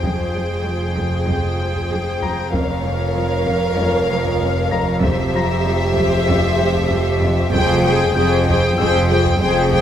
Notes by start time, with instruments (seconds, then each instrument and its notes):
Already playing: double bass section F1, cello section F2, synth drone F2, viola section G#4, violin section C5 G5, harp C7
0.03 cello section F2, taiko
0.35 cello section F3
0.66 cello section F3
0.97 cello section F2, taiko
1.29 cello section F2, taiko
1.60 cello section F3
1.75 taiko
1.91 cello section F2
2.22 cello section F2, harp A#5 A#6, taiko
2.53 double bass section F1, cello section F2, synth drone F2, viola section A#4, violin section C#5 F5, taiko
2.84 cello section F3
3.15 cello section F3
3.47 cello section F2, taiko
3.78 cello section F2, taiko
4.09 cello section F3, harp C7
4.26 taiko
4.40 cello section F2
4.71 cello section F2, harp A#5 A#6, taiko
5.03 cello section F2, viola section G4, violin section C5 E5, taiko
5.34 cello section F3, harp A#5 A#6
5.65 cello section F3
5.97 cello section F2, taiko
6.29 cello section F2, taiko
6.60 cello section F3
6.75 taiko
6.91 cello section F2
7.22 cello section F2, taiko
7.53 double bass section F1, synth drone F2, cello section F2, viola section G#4, violin section C5 G5, taiko
7.85 cello section F3, viola section G#4, violin section C5 G5
8.15 double bass section F1, cello section F2 F3, viola section G#4, violin section C5 G5, harp G6
8.47 cello section F2, viola section G#4, violin section C5 G5, taiko
8.78 double bass section F1, cello section F2, viola section G#4, violin section C5 G5, harp E6, taiko
9.09 cello section F3, viola section G#4, violin section C5 G5
9.25 taiko
9.41 double bass section F1, cello section F2, viola section G#4, violin section C5 G5
9.72 cello section F2, viola section G#4, violin section C5 G5, taiko